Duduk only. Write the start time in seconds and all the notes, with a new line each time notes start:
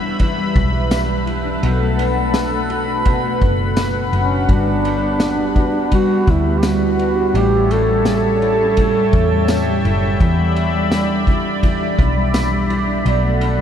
4.16 C#4
4.52 D4
5.94 F#4
6.31 E4
6.58 G4
6.66 F#4
7.37 G4
7.72 A4
8.07 A4